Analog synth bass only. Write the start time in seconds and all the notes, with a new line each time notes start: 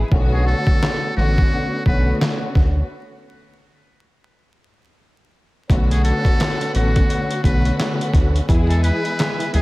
0.12 B1
1.17 A1
1.86 B1
2.56 D2
5.70 B1
6.75 A1
7.44 B1
8.14 D2
8.49 E2
9.54 D2